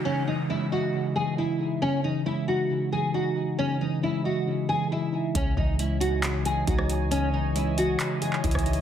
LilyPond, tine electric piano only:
\new Staff \with { instrumentName = "Tine electric piano" } { \clef bass \time 4/4 \key cis \minor \tempo 4 = 136 <cis e dis'>8 e8 gis8 dis''8 cis8 e8 e'8 dis'8 | cis8 e8 gis8 dis'8 cis8 e8 dis'8 dis'8 | cis8 e8 gis8 dis''8 cis8 e8 e'8 dis'8 | cis8 e8 gis8 dis'8 cis8 e8 dis'8 dis'8 |
cis8 e8 gis8 dis''8 cis8 e8 e'8 dis'8 | }